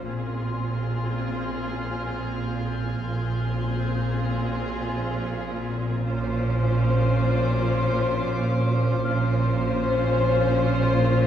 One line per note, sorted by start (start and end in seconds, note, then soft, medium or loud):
0.07 3.03 A#1 soft
0.07 3.03 A#2 soft
0.07 3.03 C4 soft
0.07 3.03 F4 soft
0.07 3.03 G#4 soft
0.07 5.63 F6 soft
0.45 2.66 C6 soft
0.83 4.44 G6 soft
1.57 5.64 G#6 soft
3.07 6.01 A#1 soft
3.07 6.01 A#2 soft
3.07 6.01 C4 soft
3.07 6.01 F4 soft
3.07 6.01 G#4 soft
4.44 5.64 F#6 soft
6.05 9.01 A#1 medium
6.05 9.01 A#2 medium
6.05 9.01 C#4 soft
6.05 9.01 F4 soft
6.05 9.00 C5 medium
6.05 11.27 C6 soft
6.05 10.89 D6 soft
9.04 11.27 A#1 medium
9.04 11.27 A#2 medium
9.04 11.27 C#4 medium
9.04 11.27 F4 medium
9.04 11.27 C5 medium
9.04 11.26 F6 soft